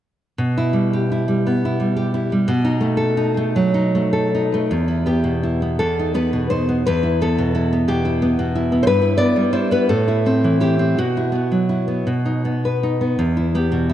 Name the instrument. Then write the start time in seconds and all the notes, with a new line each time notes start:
nylon-string guitar
0.38 B2
0.58 E4
0.73 G3
0.93 G4
1.12 E4
1.28 G3
1.47 B3
1.65 E4
1.80 G3
1.96 G4
2.14 E4
2.32 G3
2.48 B2
2.65 D#4
2.81 A3
2.97 A4
3.17 D#4
3.37 A3
3.56 F#3
3.74 D#4
3.95 A3
4.13 A4
4.35 D#4
4.54 A3
4.71 E2
4.88 E4
5.06 B3 G4
5.24 B2
5.43 E4
5.62 B3
5.79 E2 A4
5.99 D#4
6.14 B3 B4
6.33 B2
6.50 D#4 C5
6.69 B3
6.87 E2 B4
7.03 E4
7.21 B3 A4
7.38 B2
7.55 E4
7.73 B3
7.88 B2 G4
8.05 E4
8.22 B3
8.39 B2
8.55 E4
8.72 B3
8.83 C5
8.87 G2 B4
9.02 E4
9.18 B3 D5
9.36 G3
9.53 E4 C5
9.71 B3 B4
9.89 A2 A4
10.08 E4
10.26 C4
10.44 E3
10.61 E4 G4
10.79 C4
10.98 B2 F#4
11.17 E4
11.32 B3
11.52 F#3
11.69 E4
11.88 B3
12.07 B2
12.26 D#4
12.45 B3
12.65 B4
12.83 D#4
13.01 B3
13.19 E2
13.37 E4
13.55 B3 G4
13.72 B2
13.89 E4